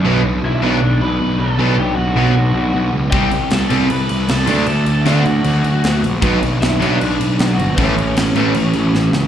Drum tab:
CC |--------|--------|xxxxxxxx|xxxxxxxx|
SD |--------|--------|--o---o-|--o---o-|
BD |--------|--------|o-------|--------|

CC |xxxxxxxx|xxxxxx--|
SD |--o---o-|--o---oo|
BD |o-------|o-------|